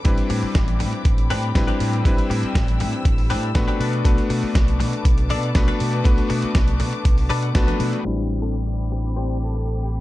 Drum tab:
HH |xxooxxoxxxoxxxox|xxoxxxoxxooxxxox|xxooxxoxxxoxxxox|xxoxxxoxxooxxxox|
SD |----o-------o---|----o-------o---|----o-------o---|----o-------o---|
BD |o---o---o---o---|o---o---o---o---|o---o---o---o---|o---o---o---o---|

HH |----------------|
SD |----------------|
BD |----------------|